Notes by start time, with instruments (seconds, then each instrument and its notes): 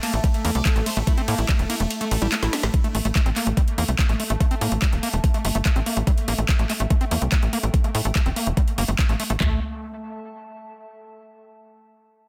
Already playing: synth texture A3, ambient pad A4 E5 A5
0.03 acid bass A#3, analog synth lead A4, clap, open hi-hat, ride
0.13 analog synth bass A1, acid bass A3, analog synth lead A3, closed hi-hat
0.24 acid bass G3, kick, closed hi-hat, ride
0.34 analog synth lead A3, closed hi-hat
0.45 analog synth bass E2, analog synth lead A3, acid bass A#3, open hi-hat, ride
0.55 analog synth bass C2, acid bass A3, analog synth lead D5, closed hi-hat
0.65 analog synth lead A3, kick, clap, closed hi-hat, ride
0.76 analog synth bass A1, acid bass A3, analog synth lead A3, closed hi-hat
0.86 acid bass A3, analog synth lead C5, open hi-hat, ride
0.97 analog synth bass A1, acid bass A3, analog synth lead A3, closed hi-hat
1.07 acid bass A3, analog synth lead E4, kick, closed hi-hat, ride
1.18 analog synth lead A3, acid bass C4, closed hi-hat
1.28 analog synth bass A2, analog synth lead A3, acid bass A#3, open hi-hat, ride
1.38 analog synth bass A1, acid bass A3, analog synth lead E4, closed hi-hat
1.49 acid bass G3, analog synth lead A3, kick, clap, closed hi-hat, ride
1.59 analog synth bass E1, analog synth lead A3, closed hi-hat
1.70 acid bass A#3, analog synth lead E4, open hi-hat, ride
1.80 analog synth bass E1, acid bass A3, analog synth lead A3, closed hi-hat
1.90 closed hi-hat, ride
2.01 acid bass A3, analog synth lead A3, closed hi-hat
2.11 analog synth bass A1, analog synth lead A3, open hi-hat, ride
2.22 analog synth bass A1, acid bass G3, analog synth lead E4, closed hi-hat
2.32 acid bass A3, analog synth lead A3, clap, closed hi-hat, ride
2.43 analog synth bass A1, analog synth lead A3, acid bass E4, snare, closed hi-hat
2.53 acid bass A3, analog synth lead D4, snare, open hi-hat, ride
2.63 analog synth bass A1, analog synth lead A3, snare, closed hi-hat
2.74 synth texture A3, ambient pad A4, kick, closed hi-hat
2.84 acid bass A3, closed hi-hat
2.95 analog synth bass A1, acid bass A3, open hi-hat
3.05 analog synth bass A1, acid bass A3, closed hi-hat
3.12 acid bass A3, ambient pad E5, kick, clap, closed hi-hat
3.26 analog synth bass A1, acid bass C4, closed hi-hat
3.36 acid bass A#3, clap, open hi-hat
3.47 analog synth bass A1, acid bass A3, closed hi-hat
3.57 acid bass G3, kick, closed hi-hat
3.68 ambient pad A5, closed hi-hat
3.78 analog synth bass E2, acid bass A#3, open hi-hat
3.88 analog synth bass C2, acid bass A3, closed hi-hat
3.99 kick, clap, closed hi-hat
4.09 analog synth bass A1, acid bass A3, closed hi-hat
4.20 acid bass A3, open hi-hat
4.30 analog synth bass A1, acid bass A3, closed hi-hat
4.40 acid bass A3, kick, closed hi-hat
4.51 acid bass C4, closed hi-hat
4.61 analog synth bass A2, acid bass A#3, open hi-hat
4.72 analog synth bass A1, acid bass A3, closed hi-hat
4.82 acid bass G3, kick, clap, closed hi-hat
4.93 analog synth bass E1, closed hi-hat
5.03 acid bass A#3, open hi-hat
5.13 analog synth bass E1, acid bass A3, closed hi-hat
5.24 kick, closed hi-hat
5.34 acid bass A3, closed hi-hat
5.45 analog synth bass G1, acid bass A3, open hi-hat
5.55 analog synth bass G1, acid bass A3, closed hi-hat
5.65 acid bass A3, kick, clap, closed hi-hat
5.76 analog synth bass A1, acid bass C4, closed hi-hat
5.86 acid bass A#3, open hi-hat
5.97 analog synth bass A1, acid bass A3, closed hi-hat
6.07 acid bass G3, kick, closed hi-hat
6.18 closed hi-hat
6.28 analog synth bass A1, acid bass A#3, open hi-hat
6.36 analog synth bass A1, acid bass A3, ambient pad G5, closed hi-hat
6.49 kick, clap, closed hi-hat
6.59 analog synth bass A1, acid bass A3, closed hi-hat
6.70 acid bass A3, clap, open hi-hat
6.80 analog synth bass A1, acid bass A3, closed hi-hat
6.90 acid bass A3, kick, closed hi-hat
7.01 acid bass C4, closed hi-hat
7.11 analog synth bass E2, acid bass A#3, open hi-hat
7.22 analog synth bass C2, acid bass A3, closed hi-hat
7.32 acid bass G3, kick, clap, closed hi-hat
7.43 analog synth bass A1, closed hi-hat
7.53 acid bass A#3, open hi-hat
7.63 analog synth bass A1, acid bass A3, closed hi-hat
7.74 kick, closed hi-hat
7.84 acid bass A3, closed hi-hat
7.95 analog synth bass A2, acid bass A3, open hi-hat
8.05 analog synth bass A1, acid bass A3, closed hi-hat
8.15 acid bass A3, kick, clap, closed hi-hat
8.26 analog synth bass E1, acid bass C4, closed hi-hat
8.36 acid bass A#3, open hi-hat
8.47 analog synth bass E1, acid bass A3, closed hi-hat
8.57 acid bass G3, kick, closed hi-hat
8.68 closed hi-hat
8.78 analog synth bass G1, acid bass A#3, open hi-hat
8.88 analog synth bass G1, acid bass A3, closed hi-hat
8.99 kick, clap, closed hi-hat
9.09 analog synth bass A1, acid bass A3, closed hi-hat
9.20 acid bass A3, open hi-hat
9.30 analog synth bass A1, acid bass A3, closed hi-hat
9.40 analog synth bass A1, acid bass A3, ambient pad A4, kick, clap, floor tom
9.47 ambient pad E5
9.53 ambient pad A5